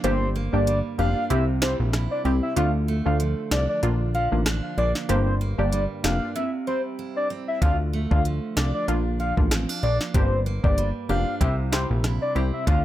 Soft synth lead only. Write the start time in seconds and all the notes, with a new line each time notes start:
0.04 C5
0.53 D5
0.98 F5
1.30 E5
1.62 C5
2.11 D5
2.43 E5
2.57 F5
3.06 F5
3.51 D5
3.69 D5
4.14 F5
4.78 D5
5.09 C5
5.59 D5
6.04 F5
6.36 E5
6.67 C5
7.16 D5
7.48 E5
7.62 F5
8.11 F5
8.57 D5
8.74 D5
9.20 F5
9.83 D5
10.14 C5
10.64 D5
11.09 F5
11.41 E5
11.73 C5
12.22 D5
12.53 E5
12.67 F5